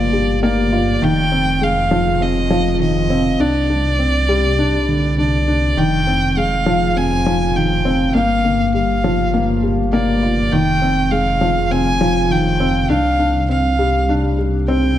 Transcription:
Already playing: detuned saw bass G1, felt piano F3 G3 A#3, violin D5
0.13 felt piano G3
0.43 felt piano A#3, violin D5
0.73 felt piano F4
1.02 detuned saw bass F1, felt piano D#3, violin G5
1.32 felt piano C4
1.62 felt piano G#3, violin F5
1.91 felt piano F3
2.21 felt piano C4, violin D#5
2.50 felt piano F3
2.80 felt piano D#3, violin D#5
3.10 felt piano C4
3.40 detuned saw bass C2, felt piano D4, violin D5
3.70 felt piano D4
3.99 felt piano C4
4.29 felt piano G3
4.59 felt piano D4
4.89 felt piano D3
5.18 felt piano D4, violin D5
5.48 felt piano D4
5.77 detuned saw bass F1, felt piano D#3, violin G5
6.07 felt piano C4
6.37 felt piano G#3, violin F5
6.66 felt piano F3
6.96 felt piano C4, violin G#5
7.26 felt piano F3
7.56 felt piano D#3, violin G5
7.85 felt piano C4
8.15 detuned saw bass G1, felt piano A#3, violin F5
8.44 felt piano A#3
8.74 felt piano G3, violin F5
9.04 felt piano F3
9.34 felt piano A#3
9.63 felt piano G3
9.93 felt piano A#3, violin D5
10.23 felt piano F4
10.52 detuned saw bass F1, felt piano D#3, violin G5
10.82 felt piano C4
11.11 felt piano G#3, violin F5
11.41 felt piano F3
11.71 felt piano C4, violin G#5
12.01 felt piano F3
12.30 felt piano D#3, violin G5
12.60 felt piano C4
12.90 detuned saw bass C2, felt piano D4, violin F5
13.19 felt piano D4
13.49 felt piano C4, violin F5
13.79 felt piano G3
14.09 felt piano D4
14.38 felt piano G3
14.68 felt piano C4, violin G5

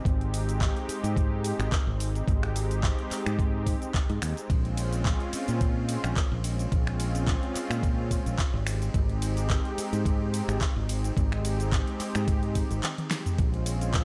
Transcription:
0.04 fingered electric bass G#1, analog synth pad G#3 C4 D#4 G4, kick, closed hi-hat, shaker
0.21 closed hi-hat
0.34 open hi-hat, shaker
0.49 closed hi-hat, shaker
0.61 kick, clap, closed hi-hat, shaker
0.77 closed hi-hat
0.89 muted fingered electric bass stroke, open hi-hat, shaker
1.04 fingered electric bass G#2, closed hi-hat, shaker
1.17 kick, closed hi-hat, shaker
1.44 open hi-hat, shaker
1.59 fingered electric bass G#1, finger snap, closed hi-hat, shaker
1.72 kick, clap, closed hi-hat, shaker
1.87 fingered electric bass G#1
2.00 open hi-hat, shaker
2.15 closed hi-hat, shaker
2.27 fingered electric bass G#1, analog synth pad G#3 C4 D#4 G4, kick, closed hi-hat, shaker
2.43 finger snap, closed hi-hat
2.56 open hi-hat, shaker
2.71 closed hi-hat, shaker
2.83 kick, clap, closed hi-hat, shaker
2.99 closed hi-hat
3.11 muted fingered electric bass stroke, clap, open hi-hat, shaker
3.26 fingered electric bass G#2, finger snap, closed hi-hat, shaker
3.39 kick, closed hi-hat, shaker
3.66 kick, open hi-hat, shaker
3.82 closed hi-hat, shaker
3.94 kick, clap, closed hi-hat, shaker
4.10 fingered electric bass G#2, closed hi-hat
4.22 fingered electric bass D#2, finger snap, open hi-hat, shaker
4.37 closed hi-hat, shaker
4.49 fingered electric bass A#1, analog synth pad G#3 C4 C#4 F4, kick, closed hi-hat, ride, shaker
4.65 closed hi-hat
4.77 open hi-hat, ride, shaker
4.93 closed hi-hat, shaker
5.05 kick, clap, closed hi-hat, ride, shaker
5.20 closed hi-hat
5.33 muted fingered electric bass stroke, open hi-hat, ride, shaker
5.48 fingered electric bass A#2, closed hi-hat, shaker
5.61 kick, closed hi-hat, ride, shaker
5.89 open hi-hat, ride, shaker
6.04 fingered electric bass A#1, finger snap, closed hi-hat, shaker
6.16 kick, clap, closed hi-hat, ride, shaker
6.32 fingered electric bass A#1
6.44 open hi-hat, ride, shaker
6.59 closed hi-hat, shaker
6.71 fingered electric bass A#1, analog synth pad G#3 C4 C#4 F4, kick, closed hi-hat, ride, shaker
6.87 finger snap, closed hi-hat
7.00 open hi-hat, ride, shaker
7.15 closed hi-hat, shaker
7.27 kick, clap, closed hi-hat, ride, shaker
7.43 closed hi-hat
7.55 muted fingered electric bass stroke, clap, open hi-hat, ride, shaker
7.70 fingered electric bass A#2, finger snap, closed hi-hat, shaker
7.83 kick, closed hi-hat, ride, shaker
8.11 kick, open hi-hat, ride, shaker
8.26 fingered electric bass A#1, closed hi-hat, shaker
8.39 kick, clap, closed hi-hat, ride, shaker
8.54 fingered electric bass G#1
8.67 finger snap, open hi-hat, ride, shaker
8.82 closed hi-hat, shaker
8.93 fingered electric bass G#1, analog synth pad G#3 C4 D#4 G4, kick, closed hi-hat, ride, shaker
9.09 closed hi-hat
9.22 open hi-hat, ride, shaker
9.37 closed hi-hat, shaker
9.50 kick, clap, closed hi-hat, ride, shaker
9.65 closed hi-hat
9.78 muted fingered electric bass stroke, open hi-hat, ride, shaker
9.93 fingered electric bass G#2, closed hi-hat, shaker
10.05 kick, closed hi-hat, ride, shaker
10.34 open hi-hat, ride, shaker
10.48 fingered electric bass G#1, finger snap, closed hi-hat, shaker
10.61 kick, clap, closed hi-hat, ride, shaker
10.76 fingered electric bass G#1
10.89 open hi-hat, ride, shaker
11.04 closed hi-hat, shaker
11.15 fingered electric bass G#1, analog synth pad G#3 C4 D#4 G4, kick, closed hi-hat, ride, shaker
11.32 finger snap, closed hi-hat
11.45 open hi-hat, ride, shaker
11.60 closed hi-hat, shaker
11.72 kick, clap, closed hi-hat, ride, shaker
11.87 closed hi-hat
12.00 muted fingered electric bass stroke, clap, open hi-hat, ride, shaker
12.15 fingered electric bass G#2, finger snap, closed hi-hat, shaker
12.28 kick, closed hi-hat, ride, shaker
12.43 closed hi-hat
12.55 kick, open hi-hat, ride, shaker
12.71 fingered electric bass G#1, closed hi-hat, shaker
12.83 clap, closed hi-hat, high tom, ride, shaker
12.98 closed hi-hat, high tom
13.11 finger snap, snare, open hi-hat, ride, shaker
13.26 closed hi-hat, mid tom, shaker
13.38 fingered electric bass A#1, analog synth pad G#3 C4 C#4 F4, kick, closed hi-hat, ride, shaker
13.54 closed hi-hat
13.66 open hi-hat, ride, shaker
13.81 closed hi-hat, shaker
13.94 kick, clap, closed hi-hat, ride, shaker

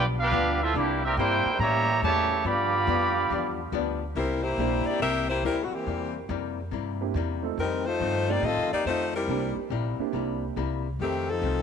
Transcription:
Already playing: upright bass B1, hollow-body jazz guitar G2 F3 B3 D4
0.18 trombone section B3 D4 F4, trumpet section D4 G4 B4 F5
0.31 upright bass D2, hollow-body jazz guitar G2 F3 B3 D4
0.61 trumpet section C4 F4 A4 E5, trombone section E4
0.74 upright bass C2, hollow-body jazz guitar C3 G3 A#3, trumpet section A#3 E4 G4 D5, trombone section D4
0.78 hollow-body jazz guitar E4
1.04 trombone section G3 A#3 E4, trumpet section C4 G4 A#4 E5
1.17 upright bass G2, hollow-body jazz guitar C3 G3 A#3, trombone section A#3 E4 G4, trumpet section E4 A#4 C5 G5
1.21 hollow-body jazz guitar E4
1.45 muted upright bass stroke
1.59 upright bass A2, hollow-body jazz guitar A2 G3 A#3 C#4, trombone section E3 G3 A#3, trumpet section G4 C#5 E5 A#5
2.02 upright bass E2, hollow-body jazz guitar A2 G3 A#3 C#4, trombone section C#3 E3 A3, trumpet section G4 C#5 E5 A5
2.44 upright bass G2, hollow-body jazz guitar G2 F3 B3 D4, trombone section D3 B3 F4, trumpet section G4 D5 F5 B5
2.87 upright bass F2, hollow-body jazz guitar G2 F3 B3 D4
3.30 upright bass E2, hollow-body jazz guitar G2 F3 B3 D4
3.72 upright bass D2, hollow-body jazz guitar G2 F3 B3 D4
4.15 upright bass C2, hollow-body jazz guitar C3 G3 A#3 E4, saxophone section G3 C4 E4 A#4
4.44 saxophone section A#3 E4 G4 C5
4.57 upright bass A#1, hollow-body jazz guitar C3 G3 A#3 E4, grand piano A#3 C4 D4 E4 G4
4.86 saxophone section A#3 E4 G4 D5
5.00 upright bass C2, hollow-body jazz guitar C3 G3 A#3 E4, saxophone section C4 G4 A#4 E5
5.30 saxophone section A#3 E4 G4 C5
5.43 upright bass D2, hollow-body jazz guitar C3 G3 A#3 E4, saxophone section G3 C4 E4 A#4
5.64 saxophone section F#4
5.71 saxophone section E3 A#3 C4 G4, muted upright bass stroke
5.86 upright bass E2, hollow-body jazz guitar C3 G3 A#3 E4
6.29 upright bass F2, hollow-body jazz guitar C3 G3 A#3 E4
6.71 upright bass G2, hollow-body jazz guitar C3 G3 A#3 E4
7.01 grand piano A#3 C4 D4 E4 G4
7.14 upright bass E2, hollow-body jazz guitar C3 G3 A#3 E4
7.42 grand piano A3 C4 D#4 F4 A4
7.57 upright bass F2, hollow-body jazz guitar F2 D#3 A3 C4, saxophone section G3 C4 D#4 A#4
7.87 saxophone section A3 D#4 F4 C5
8.00 hollow-body jazz guitar F2 D#3 A3 C4, upright bass G2
8.29 grand piano A3 C4 D#4 F4 G4, saxophone section A#3 D#4 G4 D5
8.42 hollow-body jazz guitar F2 D#3 A3 C4, upright bass A2, saxophone section C4 F4 A4 D#5
8.57 upright bass F2
8.71 upright bass D#2, saxophone section A#3 D#4 G4 D5
8.85 upright bass F2, hollow-body jazz guitar F2 D#3 A3 C4, saxophone section A3 D#4 F4 C5
9.16 saxophone section G3 C4 E4 A#4
9.28 upright bass C2, hollow-body jazz guitar C3 G3 A#3 E4, grand piano A#3 C4 D4 E4 G4
9.56 muted upright bass stroke
9.70 upright bass A#1, hollow-body jazz guitar C3 G3 A#3 E4
9.98 grand piano A#3 C4 D4 E4 G4, muted upright bass stroke
10.13 upright bass C2, hollow-body jazz guitar C3 G3 A#3 E4
10.56 upright bass C2, hollow-body jazz guitar C3 G3 A#3 E4
10.99 upright bass F2, hollow-body jazz guitar F2 D#3 A3 C4, saxophone section D#3 A3 C4 G4
11.30 saxophone section F3 C4 D#4 A4
11.42 upright bass C2, hollow-body jazz guitar F2 D#3 A3 C4

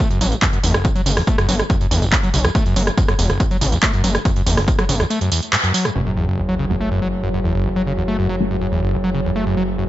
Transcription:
0.10 acid bass F#2, closed hi-hat, tambourine
0.21 analog synth bass A1, acid bass F#3, open hi-hat, tambourine
0.32 closed hi-hat, tambourine
0.42 acid bass F#2, kick, clap, closed hi-hat, tambourine
0.53 acid bass F#2, closed hi-hat, tambourine
0.63 analog synth bass F#1, acid bass E2, open hi-hat, tambourine
0.74 acid bass F#1, cross-stick, tambourine
0.85 acid bass F#2, kick, closed hi-hat, tambourine
0.95 acid bass F#3, closed hi-hat, tambourine
1.06 analog synth bass F#1, acid bass C#3, open hi-hat, tambourine
1.17 acid bass E2, cross-stick, open hi-hat, tambourine
1.27 acid bass A3, kick, closed hi-hat, tambourine
1.38 acid bass F#2, cross-stick, closed hi-hat, tambourine
1.49 analog synth bass G1, acid bass F#3, open hi-hat, tambourine
1.59 cross-stick, closed hi-hat, tambourine
1.70 acid bass F#2, kick, closed hi-hat, tambourine
1.81 acid bass F#2, closed hi-hat, tambourine
1.91 analog synth bass G1, acid bass E2, open hi-hat, tambourine
2.02 acid bass F#1, closed hi-hat, tambourine
2.12 acid bass F#2, kick, clap, closed hi-hat, tambourine
2.23 acid bass F#3, closed hi-hat, tambourine
2.34 analog synth bass B1, acid bass C#3, open hi-hat, tambourine
2.45 acid bass E2, cross-stick, closed hi-hat, tambourine
2.55 acid bass A3, kick, closed hi-hat, tambourine
2.66 acid bass F#2, closed hi-hat, tambourine
2.76 analog synth bass F#1, acid bass F#3, open hi-hat, tambourine
2.87 cross-stick, closed hi-hat, tambourine
2.98 acid bass F#2, kick, closed hi-hat, tambourine
3.08 acid bass F#2, cross-stick, closed hi-hat, tambourine
3.19 analog synth bass E1, acid bass E2, open hi-hat, tambourine
3.30 acid bass F#1, cross-stick, closed hi-hat, tambourine
3.40 acid bass F#2, kick, closed hi-hat, tambourine
3.51 acid bass F#3, closed hi-hat, tambourine
3.61 analog synth bass A1, acid bass C#3, open hi-hat, tambourine
3.72 acid bass E2, closed hi-hat, tambourine
3.83 acid bass A3, kick, clap, closed hi-hat
3.93 acid bass F#2, closed hi-hat, tambourine
4.04 analog synth bass F#1, acid bass F#3, open hi-hat, tambourine
4.15 cross-stick, closed hi-hat, tambourine
4.25 acid bass F#2, kick, closed hi-hat, tambourine
4.36 acid bass F#2, closed hi-hat, tambourine
4.46 analog synth bass F#1, acid bass E2, open hi-hat, tambourine
4.57 acid bass F#1, cross-stick, open hi-hat, tambourine
4.68 acid bass F#2, kick, closed hi-hat, tambourine
4.79 acid bass F#3, cross-stick, closed hi-hat, tambourine
4.89 analog synth bass G1, acid bass C#3, open hi-hat, tambourine
5.00 acid bass E2, cross-stick, closed hi-hat, tambourine
5.10 acid bass A3, closed hi-hat, tambourine
5.21 acid bass F#2, closed hi-hat, tambourine
5.32 acid bass E2, open hi-hat, tambourine
5.42 closed hi-hat, tambourine
5.53 acid bass G2, clap, closed hi-hat, tambourine
5.64 acid bass F#2, closed hi-hat, tambourine
5.74 acid bass F#3, open hi-hat, tambourine
5.85 acid bass F#2, cross-stick, closed hi-hat, tambourine
5.95 analog synth bass F#1, acid bass F#2, synth drone F#3, crash, sub drop
6.06 acid bass F#2
6.17 acid bass E2
6.28 acid bass F#1
6.38 acid bass F#2
6.49 acid bass F#3
6.59 acid bass C#3
6.70 acid bass E2, synth stab A3 C#4 F#4
6.81 acid bass A3
6.91 acid bass F#2
7.02 acid bass F#3
7.23 acid bass F#2
7.34 acid bass F#2
7.44 acid bass E2
7.55 acid bass F#1
7.66 acid bass F#2
7.76 acid bass F#3
7.87 acid bass C#3
7.98 acid bass E2
8.08 acid bass A3
8.19 acid bass F#2
8.29 acid bass F#3
8.40 synth stab A3 C#4 F#4
8.51 acid bass F#2
8.61 acid bass F#2
8.72 acid bass E2
8.83 acid bass F#1
8.93 acid bass F#2
9.04 acid bass F#3
9.14 acid bass C#3
9.25 acid bass E2
9.36 acid bass A3
9.47 acid bass F#2
9.57 acid bass F#3
9.78 acid bass F#2

